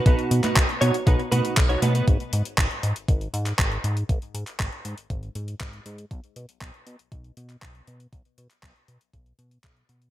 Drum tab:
HH |xxxxxxxxxxxxxxxx|xxxxxxxxxxxxxxxx|xxxxxxxxxxxxxxxx|xxxxxxxxxxxxxxxx|
CP |---xx-------x---|----x------xx---|---xx-------x---|----x------xx---|
CG |---o------o---o-|----------------|----------------|----------------|
BD |o---o---o---o---|o---o---o---o---|o---o---o---o---|o---o---o---o---|

HH |xxxxxxxxxxxxxxxx|
CP |---xx-------x---|
CG |----------------|
BD |o---o---o---o---|